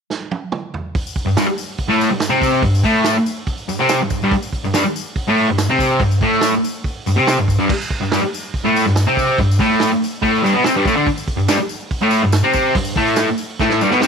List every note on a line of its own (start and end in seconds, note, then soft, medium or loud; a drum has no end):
0.10 snare medium
0.31 high tom medium
0.52 mid tom medium
0.74 floor tom loud
0.95 kick loud
0.95 open hi-hat medium
0.95 tambourine soft
1.07 tambourine medium
1.16 kick medium
1.16 open hi-hat medium
1.16 tambourine soft
1.26 1.36 G2 medium
1.26 tambourine soft
1.37 1.47 G2 medium
1.37 1.47 G3 loud
1.37 snare loud
1.37 open hi-hat medium
1.37 tambourine medium
1.48 muted distorted electric guitar stroke medium
1.58 open hi-hat medium
1.58 tambourine medium
1.69 tambourine soft
1.78 kick medium
1.78 open hi-hat medium
1.78 tambourine soft
1.89 2.09 A2 medium
1.89 2.10 A3 loud
1.89 tambourine soft
2.00 open hi-hat medium
2.00 tambourine medium
2.10 2.27 G2 medium
2.20 snare loud
2.20 open hi-hat medium
2.20 tambourine medium
2.29 2.61 C3 medium
2.29 2.62 C4 medium
2.29 tambourine soft
2.41 kick medium
2.41 open hi-hat medium
2.41 tambourine medium
2.62 2.80 G2 medium
2.62 kick loud
2.62 open hi-hat loud
2.62 tambourine soft
2.75 tambourine medium
2.83 3.15 A2 medium
2.83 3.15 A3 loud
2.83 kick medium
2.83 open hi-hat medium
2.83 tambourine soft
2.96 tambourine soft
3.04 snare loud
3.04 open hi-hat medium
3.04 tambourine loud
3.26 open hi-hat medium
3.26 tambourine medium
3.36 tambourine soft
3.46 kick medium
3.46 open hi-hat medium
3.46 tambourine soft
3.58 tambourine soft
3.69 3.79 G2 medium
3.69 open hi-hat medium
3.69 tambourine medium
3.79 3.99 C3 medium
3.79 4.00 C4 loud
3.79 snare soft
3.89 snare loud
3.89 open hi-hat medium
3.89 tambourine loud
4.01 4.18 G2 medium
4.10 kick medium
4.10 open hi-hat medium
4.10 tambourine medium
4.22 4.32 G2 medium
4.22 4.32 G3 medium
4.22 tambourine soft
4.31 kick loud
4.31 open hi-hat medium
4.31 tambourine soft
4.42 tambourine medium
4.53 kick medium
4.53 open hi-hat medium
4.53 tambourine soft
4.65 4.73 G2 medium
4.65 tambourine soft
4.74 4.84 G2 medium
4.74 4.84 G3 loud
4.74 snare loud
4.74 open hi-hat medium
4.74 tambourine loud
4.85 muted distorted electric guitar stroke medium
4.95 open hi-hat medium
4.95 tambourine medium
5.08 tambourine soft
5.16 kick medium
5.16 open hi-hat medium
5.16 tambourine soft
5.28 5.47 A2 loud
5.28 5.48 A3 loud
5.28 tambourine soft
5.37 open hi-hat medium
5.48 5.65 G2 medium
5.58 snare loud
5.58 open hi-hat medium
5.58 tambourine loud
5.69 6.00 C3 medium
5.69 6.01 C4 medium
5.79 kick medium
5.79 open hi-hat medium
5.79 tambourine medium
5.90 tambourine soft
6.00 6.17 G2 medium
6.00 kick loud
6.00 open hi-hat loud
6.00 tambourine soft
6.11 tambourine medium
6.21 6.53 A2 medium
6.21 6.53 A3 medium
6.21 kick medium
6.21 open hi-hat medium
6.33 tambourine soft
6.41 snare loud
6.41 open hi-hat medium
6.41 tambourine loud
6.54 tambourine soft
6.64 open hi-hat medium
6.64 tambourine medium
6.75 tambourine soft
6.84 kick medium
6.84 open hi-hat medium
6.84 tambourine soft
7.06 7.17 G2 medium
7.06 open hi-hat medium
7.06 tambourine medium
7.16 7.37 C3 medium
7.16 7.38 C4 loud
7.16 tambourine soft
7.27 snare loud
7.27 open hi-hat medium
7.27 tambourine loud
7.38 7.54 G2 medium
7.38 tambourine soft
7.48 kick medium
7.48 open hi-hat medium
7.48 tambourine medium
7.59 7.69 G2 medium
7.59 7.69 G3 loud
7.69 kick loud
7.69 tambourine soft
7.69 crash loud
7.81 tambourine medium
7.90 kick medium
7.90 open hi-hat medium
7.90 tambourine soft
8.01 8.11 G2 medium
8.01 tambourine soft
8.12 8.22 G2 medium
8.12 8.22 G3 medium
8.12 snare loud
8.12 open hi-hat medium
8.12 tambourine loud
8.23 muted distorted electric guitar stroke medium
8.33 open hi-hat medium
8.33 tambourine medium
8.46 tambourine soft
8.54 kick medium
8.54 open hi-hat medium
8.54 tambourine soft
8.64 8.85 A2 medium
8.64 8.85 A3 loud
8.64 tambourine soft
8.75 open hi-hat medium
8.75 tambourine medium
8.85 9.02 G2 medium
8.85 snare soft
8.96 snare loud
8.96 open hi-hat medium
8.96 tambourine loud
9.07 9.37 C3 medium
9.07 9.38 C4 medium
9.17 kick medium
9.17 open hi-hat medium
9.17 tambourine medium
9.38 9.56 G2 medium
9.38 kick loud
9.38 open hi-hat medium
9.38 tambourine soft
9.51 tambourine medium
9.59 9.90 A2 medium
9.59 9.91 A3 loud
9.59 kick medium
9.59 open hi-hat medium
9.59 tambourine soft
9.73 tambourine soft
9.80 snare loud
9.80 open hi-hat medium
9.80 tambourine loud
10.02 open hi-hat medium
10.02 tambourine medium
10.15 tambourine soft
10.22 10.43 A2 loud
10.22 10.43 A3 loud
10.22 kick medium
10.22 open hi-hat medium
10.22 tambourine soft
10.35 tambourine soft
10.43 10.53 G2 loud
10.43 10.53 G3 loud
10.43 open hi-hat medium
10.43 tambourine medium
10.54 10.64 B2 loud
10.54 10.64 B3 loud
10.64 10.74 C3 medium
10.64 10.75 C4 loud
10.64 snare loud
10.64 open hi-hat medium
10.64 tambourine medium
10.75 10.85 G2 medium
10.75 10.85 G3 loud
10.75 tambourine soft
10.85 10.95 A2 loud
10.85 10.96 A3 loud
10.85 kick loud
10.85 open hi-hat medium
10.85 tambourine medium
10.96 11.06 D3 medium
10.96 11.06 D4 medium
10.96 tambourine soft
11.07 kick loud
11.07 open hi-hat medium
11.07 tambourine soft
11.18 tambourine medium
11.28 kick medium
11.28 open hi-hat medium
11.28 tambourine soft
11.37 11.47 G2 medium
11.37 tambourine soft
11.48 11.58 G2 medium
11.48 11.58 G3 loud
11.48 snare loud
11.48 open hi-hat medium
11.48 tambourine loud
11.59 muted distorted electric guitar stroke medium
11.69 open hi-hat medium
11.69 tambourine medium
11.81 tambourine soft
11.91 kick medium
11.91 open hi-hat medium
11.91 tambourine soft
12.01 12.22 A2 loud
12.01 12.22 A3 medium
12.01 tambourine soft
12.11 open hi-hat medium
12.11 tambourine medium
12.23 12.39 G2 medium
12.32 snare loud
12.32 open hi-hat medium
12.32 tambourine loud
12.43 12.74 C3 medium
12.43 12.74 C4 medium
12.43 tambourine soft
12.53 kick medium
12.53 open hi-hat medium
12.53 tambourine medium
12.64 tambourine soft
12.75 12.92 G2 medium
12.75 kick loud
12.75 open hi-hat loud
12.75 tambourine soft
12.85 tambourine medium
12.96 13.27 A2 medium
12.96 13.27 A3 loud
12.96 kick medium
12.96 open hi-hat medium
13.07 tambourine soft
13.16 snare loud
13.16 open hi-hat medium
13.16 tambourine loud
13.38 open hi-hat medium
13.38 tambourine medium
13.59 13.80 A2 medium
13.59 13.80 A3 loud
13.59 kick medium
13.59 snare medium
13.59 tambourine soft
13.70 snare medium
13.70 tambourine soft
13.81 13.91 G2 medium
13.81 13.91 G3 loud
13.81 tambourine medium
13.90 14.01 B2 loud
13.90 14.01 B3 loud
13.90 snare medium
13.90 tambourine soft
14.00 14.07 C3 medium
14.00 14.07 C4 medium
14.00 snare medium
14.00 tambourine loud